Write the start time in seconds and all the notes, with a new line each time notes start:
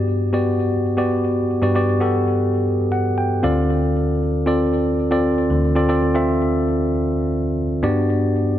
Already playing: G2 B3 F#4 G4 D5
0.33 B3 F#4 G4 D5
0.97 B3 F#4 G4 D5
1.62 G2 B3 F#4 G4 D5
1.75 B3 F#4 G4 D5
2.01 B3 F#4 G4 A4
2.92 F#5
3.18 G5
3.43 D2 D3 C4 F4 A4 D5 F5
4.46 C4 F4 A4 D5
5.11 C4 F4 A4 D5
5.50 D2 D3
5.75 C4 F4 A4 D5
5.89 C4 F4 A4 D5
6.15 C4 F4 A4 E5
7.83 G2 B3 D4 F#4 G4 D5